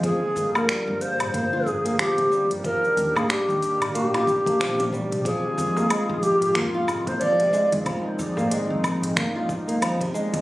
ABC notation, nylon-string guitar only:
X:1
M:4/4
L:1/16
Q:"Swing 16ths" 1/4=92
K:Fdor
V:1 name="Nylon-string guitar" clef=bass
F, z2 B, G,4 B, F z B, F, C, G,2 | F, z2 B, G,4 B, F z B, F, C, G,2 | F, z2 B, A,4 B, F z B, F, C, A,2 | F, z2 B, A,4 B, F z B, F, C, A,2 |]